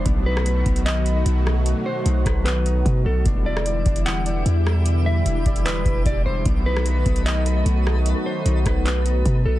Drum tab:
HH |x---x-xxx-x-x---|x---x-x-x-x-x---|x---x-xxx-x-x---|x---x-xxx-x-x---|
CP |--------x-------|--------x-------|--------x-------|--------x-------|
SD |---r----------r-|------r---------|---r----------r-|----------------|
BD |o-----o---------|------o-----o---|o-----o---------|------o---o-o---|

HH |x---x-xxx-x-x---|x---x-x-x-x-x---|
CP |--------x-------|--------x-------|
SD |---r----------r-|------r---------|
BD |o-----o---------|------o-----o---|